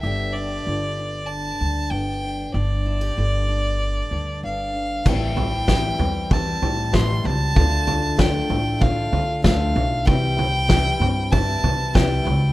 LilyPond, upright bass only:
\new Staff \with { instrumentName = "Upright bass" } { \clef bass \time 4/4 \key g \mixolydian \tempo 4 = 96 g,,4 g,,4. d,8 g,,4 | g,,4 g,,4. d,8 g,,4 | a,,4. e,4 a,8 a,,8 des,8 | d,4. a,,4 d8 d,8 b,,8 |
c,4. g,4 c8 c,8 des,8 | }